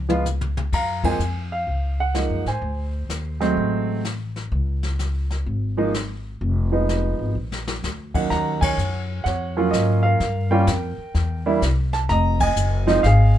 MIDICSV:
0, 0, Header, 1, 5, 480
1, 0, Start_track
1, 0, Tempo, 473560
1, 734, Time_signature, 4, 2, 24, 8
1, 13565, End_track
2, 0, Start_track
2, 0, Title_t, "Grand piano"
2, 0, Program_c, 0, 0
2, 88, Note_on_c, 0, 53, 66
2, 88, Note_on_c, 0, 56, 58
2, 92, Note_on_c, 0, 59, 59
2, 97, Note_on_c, 0, 65, 74
2, 236, Note_off_c, 0, 53, 0
2, 236, Note_off_c, 0, 56, 0
2, 238, Note_off_c, 0, 59, 0
2, 241, Note_off_c, 0, 65, 0
2, 751, Note_on_c, 0, 82, 82
2, 762, Note_on_c, 0, 77, 61
2, 1038, Note_off_c, 0, 82, 0
2, 1052, Note_on_c, 0, 53, 53
2, 1057, Note_on_c, 0, 56, 52
2, 1061, Note_on_c, 0, 58, 49
2, 1062, Note_on_c, 0, 60, 61
2, 1066, Note_on_c, 0, 80, 80
2, 1199, Note_off_c, 0, 53, 0
2, 1201, Note_off_c, 0, 56, 0
2, 1203, Note_off_c, 0, 58, 0
2, 1203, Note_off_c, 0, 60, 0
2, 1505, Note_off_c, 0, 80, 0
2, 1527, Note_off_c, 0, 77, 0
2, 1542, Note_on_c, 0, 77, 70
2, 1984, Note_off_c, 0, 77, 0
2, 2030, Note_on_c, 0, 78, 89
2, 2173, Note_on_c, 0, 53, 45
2, 2177, Note_on_c, 0, 56, 43
2, 2184, Note_on_c, 0, 58, 47
2, 2189, Note_on_c, 0, 63, 55
2, 2459, Note_off_c, 0, 53, 0
2, 2461, Note_off_c, 0, 56, 0
2, 2464, Note_off_c, 0, 58, 0
2, 2467, Note_off_c, 0, 63, 0
2, 2468, Note_off_c, 0, 78, 0
2, 2510, Note_on_c, 0, 80, 69
2, 2514, Note_on_c, 0, 72, 50
2, 2948, Note_off_c, 0, 80, 0
2, 3423, Note_off_c, 0, 72, 0
2, 3451, Note_on_c, 0, 54, 74
2, 3452, Note_on_c, 0, 56, 64
2, 3458, Note_on_c, 0, 57, 67
2, 3460, Note_on_c, 0, 60, 79
2, 4062, Note_off_c, 0, 54, 0
2, 4062, Note_off_c, 0, 56, 0
2, 4066, Note_off_c, 0, 57, 0
2, 4067, Note_off_c, 0, 60, 0
2, 5852, Note_on_c, 0, 53, 69
2, 5854, Note_on_c, 0, 56, 67
2, 5858, Note_on_c, 0, 58, 67
2, 5862, Note_on_c, 0, 63, 76
2, 5999, Note_off_c, 0, 53, 0
2, 6000, Note_off_c, 0, 56, 0
2, 6002, Note_off_c, 0, 58, 0
2, 6004, Note_off_c, 0, 63, 0
2, 6809, Note_on_c, 0, 53, 57
2, 6812, Note_on_c, 0, 59, 56
2, 6813, Note_on_c, 0, 56, 56
2, 6822, Note_on_c, 0, 63, 65
2, 7421, Note_off_c, 0, 53, 0
2, 7423, Note_off_c, 0, 56, 0
2, 7423, Note_off_c, 0, 59, 0
2, 7427, Note_off_c, 0, 63, 0
2, 8253, Note_on_c, 0, 39, 45
2, 8254, Note_on_c, 0, 54, 42
2, 8256, Note_on_c, 0, 58, 43
2, 8262, Note_on_c, 0, 61, 40
2, 8263, Note_on_c, 0, 63, 53
2, 8263, Note_on_c, 0, 78, 76
2, 8410, Note_off_c, 0, 78, 0
2, 8416, Note_on_c, 0, 82, 89
2, 8436, Note_on_c, 0, 78, 68
2, 8728, Note_on_c, 0, 80, 90
2, 8742, Note_off_c, 0, 82, 0
2, 8752, Note_on_c, 0, 73, 67
2, 8863, Note_off_c, 0, 39, 0
2, 8863, Note_off_c, 0, 54, 0
2, 8864, Note_off_c, 0, 58, 0
2, 8867, Note_off_c, 0, 61, 0
2, 8868, Note_off_c, 0, 63, 0
2, 9344, Note_off_c, 0, 78, 0
2, 9364, Note_on_c, 0, 78, 81
2, 9383, Note_off_c, 0, 73, 0
2, 9392, Note_off_c, 0, 80, 0
2, 9398, Note_on_c, 0, 73, 61
2, 9697, Note_on_c, 0, 54, 64
2, 9701, Note_on_c, 0, 61, 56
2, 9702, Note_on_c, 0, 58, 61
2, 9707, Note_on_c, 0, 65, 73
2, 9840, Note_on_c, 0, 75, 74
2, 9864, Note_off_c, 0, 78, 0
2, 10163, Note_on_c, 0, 77, 84
2, 10174, Note_off_c, 0, 75, 0
2, 10192, Note_on_c, 0, 70, 60
2, 10304, Note_off_c, 0, 54, 0
2, 10305, Note_off_c, 0, 73, 0
2, 10306, Note_off_c, 0, 61, 0
2, 10307, Note_off_c, 0, 58, 0
2, 10309, Note_off_c, 0, 65, 0
2, 10650, Note_on_c, 0, 55, 66
2, 10652, Note_on_c, 0, 79, 75
2, 10655, Note_on_c, 0, 58, 65
2, 10660, Note_off_c, 0, 70, 0
2, 10661, Note_off_c, 0, 77, 0
2, 10661, Note_on_c, 0, 61, 67
2, 10661, Note_on_c, 0, 65, 82
2, 10675, Note_on_c, 0, 70, 54
2, 10797, Note_off_c, 0, 55, 0
2, 10800, Note_off_c, 0, 58, 0
2, 10802, Note_off_c, 0, 61, 0
2, 10802, Note_off_c, 0, 65, 0
2, 11570, Note_off_c, 0, 79, 0
2, 11581, Note_off_c, 0, 70, 0
2, 11617, Note_on_c, 0, 55, 71
2, 11619, Note_on_c, 0, 58, 66
2, 11621, Note_on_c, 0, 62, 69
2, 11624, Note_on_c, 0, 64, 78
2, 11760, Note_off_c, 0, 55, 0
2, 11761, Note_off_c, 0, 58, 0
2, 11762, Note_off_c, 0, 62, 0
2, 11764, Note_off_c, 0, 64, 0
2, 12095, Note_on_c, 0, 81, 85
2, 12146, Note_off_c, 0, 81, 0
2, 12257, Note_on_c, 0, 82, 100
2, 12282, Note_on_c, 0, 75, 68
2, 12549, Note_off_c, 0, 82, 0
2, 12574, Note_on_c, 0, 80, 94
2, 12584, Note_off_c, 0, 75, 0
2, 12600, Note_on_c, 0, 75, 72
2, 13042, Note_on_c, 0, 53, 77
2, 13044, Note_on_c, 0, 56, 67
2, 13048, Note_on_c, 0, 60, 68
2, 13049, Note_on_c, 0, 63, 86
2, 13192, Note_off_c, 0, 53, 0
2, 13193, Note_off_c, 0, 56, 0
2, 13195, Note_off_c, 0, 60, 0
2, 13196, Note_off_c, 0, 63, 0
2, 13207, Note_on_c, 0, 77, 85
2, 13233, Note_off_c, 0, 80, 0
2, 13242, Note_on_c, 0, 68, 62
2, 13503, Note_off_c, 0, 75, 0
2, 13565, Note_off_c, 0, 68, 0
2, 13565, Note_off_c, 0, 77, 0
2, 13565, End_track
3, 0, Start_track
3, 0, Title_t, "Upright bass"
3, 0, Program_c, 1, 32
3, 0, Note_on_c, 1, 37, 70
3, 691, Note_off_c, 1, 37, 0
3, 734, Note_on_c, 1, 42, 74
3, 1181, Note_off_c, 1, 42, 0
3, 1208, Note_on_c, 1, 41, 62
3, 1658, Note_off_c, 1, 41, 0
3, 1691, Note_on_c, 1, 37, 70
3, 2293, Note_off_c, 1, 37, 0
3, 2331, Note_on_c, 1, 42, 50
3, 2482, Note_off_c, 1, 42, 0
3, 2494, Note_on_c, 1, 45, 55
3, 2643, Note_off_c, 1, 45, 0
3, 2652, Note_on_c, 1, 38, 76
3, 3100, Note_off_c, 1, 38, 0
3, 3132, Note_on_c, 1, 39, 65
3, 3580, Note_off_c, 1, 39, 0
3, 3618, Note_on_c, 1, 33, 70
3, 4536, Note_off_c, 1, 33, 0
3, 4578, Note_on_c, 1, 37, 82
3, 5496, Note_off_c, 1, 37, 0
3, 5538, Note_on_c, 1, 32, 75
3, 6456, Note_off_c, 1, 32, 0
3, 6498, Note_on_c, 1, 29, 80
3, 7253, Note_off_c, 1, 29, 0
3, 7285, Note_on_c, 1, 32, 64
3, 7440, Note_off_c, 1, 32, 0
3, 7450, Note_on_c, 1, 34, 69
3, 7899, Note_off_c, 1, 34, 0
3, 7934, Note_on_c, 1, 38, 63
3, 8381, Note_off_c, 1, 38, 0
3, 8422, Note_on_c, 1, 39, 81
3, 8884, Note_off_c, 1, 39, 0
3, 8895, Note_on_c, 1, 42, 78
3, 9360, Note_off_c, 1, 42, 0
3, 9379, Note_on_c, 1, 41, 74
3, 9842, Note_off_c, 1, 41, 0
3, 9859, Note_on_c, 1, 44, 79
3, 10322, Note_off_c, 1, 44, 0
3, 10341, Note_on_c, 1, 43, 81
3, 10803, Note_off_c, 1, 43, 0
3, 10816, Note_on_c, 1, 41, 78
3, 11109, Note_off_c, 1, 41, 0
3, 11295, Note_on_c, 1, 40, 75
3, 11759, Note_off_c, 1, 40, 0
3, 11772, Note_on_c, 1, 36, 78
3, 12238, Note_off_c, 1, 36, 0
3, 12254, Note_on_c, 1, 29, 89
3, 12718, Note_off_c, 1, 29, 0
3, 12732, Note_on_c, 1, 30, 81
3, 13197, Note_off_c, 1, 30, 0
3, 13213, Note_on_c, 1, 32, 79
3, 13565, Note_off_c, 1, 32, 0
3, 13565, End_track
4, 0, Start_track
4, 0, Title_t, "Muted upright bass strokes"
4, 11128, Note_on_c, 9, 29, 41
4, 11229, Note_off_c, 9, 29, 0
4, 13565, End_track
5, 0, Start_track
5, 0, Title_t, "Drums"
5, 97, Note_on_c, 9, 48, 55
5, 198, Note_off_c, 9, 48, 0
5, 261, Note_on_c, 9, 47, 51
5, 263, Note_on_c, 9, 44, 48
5, 362, Note_off_c, 9, 47, 0
5, 364, Note_off_c, 9, 44, 0
5, 418, Note_on_c, 9, 47, 60
5, 519, Note_off_c, 9, 47, 0
5, 580, Note_on_c, 9, 47, 70
5, 681, Note_off_c, 9, 47, 0
5, 736, Note_on_c, 9, 36, 62
5, 737, Note_on_c, 9, 25, 45
5, 737, Note_on_c, 9, 49, 60
5, 837, Note_off_c, 9, 36, 0
5, 838, Note_off_c, 9, 49, 0
5, 1052, Note_on_c, 9, 36, 70
5, 1055, Note_on_c, 9, 51, 63
5, 1153, Note_off_c, 9, 36, 0
5, 1156, Note_off_c, 9, 51, 0
5, 1216, Note_on_c, 9, 44, 43
5, 1317, Note_off_c, 9, 44, 0
5, 1695, Note_on_c, 9, 36, 29
5, 1696, Note_off_c, 9, 25, 0
5, 1696, Note_on_c, 9, 25, 37
5, 1796, Note_off_c, 9, 36, 0
5, 2176, Note_on_c, 9, 38, 51
5, 2178, Note_on_c, 9, 44, 43
5, 2277, Note_off_c, 9, 38, 0
5, 2279, Note_off_c, 9, 44, 0
5, 2496, Note_on_c, 9, 38, 37
5, 2597, Note_off_c, 9, 38, 0
5, 2654, Note_off_c, 9, 25, 0
5, 2654, Note_on_c, 9, 25, 46
5, 2655, Note_on_c, 9, 36, 29
5, 2756, Note_off_c, 9, 36, 0
5, 3139, Note_on_c, 9, 38, 48
5, 3141, Note_on_c, 9, 44, 55
5, 3240, Note_off_c, 9, 38, 0
5, 3242, Note_off_c, 9, 44, 0
5, 3459, Note_on_c, 9, 38, 33
5, 3561, Note_off_c, 9, 38, 0
5, 3619, Note_on_c, 9, 36, 28
5, 3623, Note_off_c, 9, 25, 0
5, 3623, Note_on_c, 9, 25, 37
5, 3720, Note_off_c, 9, 36, 0
5, 4102, Note_on_c, 9, 38, 51
5, 4104, Note_on_c, 9, 44, 54
5, 4203, Note_off_c, 9, 38, 0
5, 4205, Note_off_c, 9, 44, 0
5, 4418, Note_on_c, 9, 38, 32
5, 4520, Note_off_c, 9, 38, 0
5, 4579, Note_on_c, 9, 36, 29
5, 4583, Note_off_c, 9, 25, 0
5, 4583, Note_on_c, 9, 25, 38
5, 4681, Note_off_c, 9, 36, 0
5, 4896, Note_on_c, 9, 38, 43
5, 4997, Note_off_c, 9, 38, 0
5, 5060, Note_on_c, 9, 38, 47
5, 5062, Note_on_c, 9, 44, 46
5, 5161, Note_off_c, 9, 38, 0
5, 5163, Note_off_c, 9, 44, 0
5, 5377, Note_on_c, 9, 38, 35
5, 5479, Note_off_c, 9, 38, 0
5, 5539, Note_on_c, 9, 36, 30
5, 5543, Note_off_c, 9, 25, 0
5, 5543, Note_on_c, 9, 25, 41
5, 5641, Note_off_c, 9, 36, 0
5, 6023, Note_on_c, 9, 38, 53
5, 6025, Note_on_c, 9, 44, 43
5, 6125, Note_off_c, 9, 38, 0
5, 6127, Note_off_c, 9, 44, 0
5, 6498, Note_on_c, 9, 36, 28
5, 6502, Note_off_c, 9, 25, 0
5, 6502, Note_on_c, 9, 25, 44
5, 6600, Note_off_c, 9, 36, 0
5, 6984, Note_on_c, 9, 38, 46
5, 6986, Note_on_c, 9, 44, 45
5, 7085, Note_off_c, 9, 38, 0
5, 7087, Note_off_c, 9, 44, 0
5, 7622, Note_on_c, 9, 38, 50
5, 7724, Note_off_c, 9, 38, 0
5, 7780, Note_on_c, 9, 38, 70
5, 7881, Note_off_c, 9, 38, 0
5, 7944, Note_on_c, 9, 38, 48
5, 7946, Note_on_c, 9, 44, 44
5, 8045, Note_off_c, 9, 38, 0
5, 8047, Note_off_c, 9, 44, 0
5, 8257, Note_on_c, 9, 36, 65
5, 8258, Note_on_c, 9, 49, 60
5, 8358, Note_off_c, 9, 36, 0
5, 8359, Note_off_c, 9, 49, 0
5, 8420, Note_on_c, 9, 36, 25
5, 8422, Note_off_c, 9, 25, 0
5, 8422, Note_on_c, 9, 25, 38
5, 8422, Note_on_c, 9, 38, 40
5, 8522, Note_off_c, 9, 36, 0
5, 8523, Note_off_c, 9, 38, 0
5, 8738, Note_on_c, 9, 36, 79
5, 8740, Note_on_c, 9, 49, 68
5, 8839, Note_off_c, 9, 36, 0
5, 8842, Note_off_c, 9, 49, 0
5, 8907, Note_on_c, 9, 44, 49
5, 9008, Note_off_c, 9, 44, 0
5, 9382, Note_on_c, 9, 36, 21
5, 9383, Note_off_c, 9, 25, 0
5, 9383, Note_on_c, 9, 25, 34
5, 9383, Note_on_c, 9, 38, 39
5, 9483, Note_off_c, 9, 36, 0
5, 9485, Note_off_c, 9, 38, 0
5, 9862, Note_on_c, 9, 36, 18
5, 9866, Note_on_c, 9, 38, 57
5, 9868, Note_on_c, 9, 44, 45
5, 9964, Note_off_c, 9, 36, 0
5, 9967, Note_off_c, 9, 38, 0
5, 9969, Note_off_c, 9, 44, 0
5, 10341, Note_off_c, 9, 25, 0
5, 10341, Note_on_c, 9, 25, 46
5, 10341, Note_on_c, 9, 36, 21
5, 10341, Note_on_c, 9, 38, 43
5, 10442, Note_off_c, 9, 36, 0
5, 10443, Note_off_c, 9, 38, 0
5, 10818, Note_on_c, 9, 38, 55
5, 10819, Note_on_c, 9, 36, 23
5, 10820, Note_on_c, 9, 44, 46
5, 10919, Note_off_c, 9, 38, 0
5, 10921, Note_off_c, 9, 36, 0
5, 10921, Note_off_c, 9, 44, 0
5, 11299, Note_off_c, 9, 25, 0
5, 11299, Note_on_c, 9, 25, 48
5, 11299, Note_on_c, 9, 36, 21
5, 11299, Note_on_c, 9, 38, 39
5, 11400, Note_off_c, 9, 36, 0
5, 11400, Note_off_c, 9, 38, 0
5, 11777, Note_on_c, 9, 36, 18
5, 11779, Note_on_c, 9, 38, 57
5, 11781, Note_on_c, 9, 44, 52
5, 11878, Note_off_c, 9, 36, 0
5, 11880, Note_off_c, 9, 38, 0
5, 11882, Note_off_c, 9, 44, 0
5, 12091, Note_on_c, 9, 38, 39
5, 12192, Note_off_c, 9, 38, 0
5, 12256, Note_off_c, 9, 25, 0
5, 12256, Note_on_c, 9, 25, 51
5, 12256, Note_on_c, 9, 36, 23
5, 12256, Note_on_c, 9, 38, 40
5, 12357, Note_off_c, 9, 36, 0
5, 12357, Note_off_c, 9, 38, 0
5, 12570, Note_on_c, 9, 49, 68
5, 12572, Note_on_c, 9, 36, 79
5, 12671, Note_off_c, 9, 49, 0
5, 12673, Note_off_c, 9, 36, 0
5, 12737, Note_on_c, 9, 44, 56
5, 12838, Note_off_c, 9, 44, 0
5, 13052, Note_on_c, 9, 38, 39
5, 13153, Note_off_c, 9, 38, 0
5, 13214, Note_on_c, 9, 36, 19
5, 13216, Note_off_c, 9, 25, 0
5, 13216, Note_on_c, 9, 25, 44
5, 13216, Note_on_c, 9, 38, 41
5, 13316, Note_off_c, 9, 36, 0
5, 13317, Note_off_c, 9, 38, 0
5, 13565, Note_off_c, 9, 25, 0
5, 13565, End_track
0, 0, End_of_file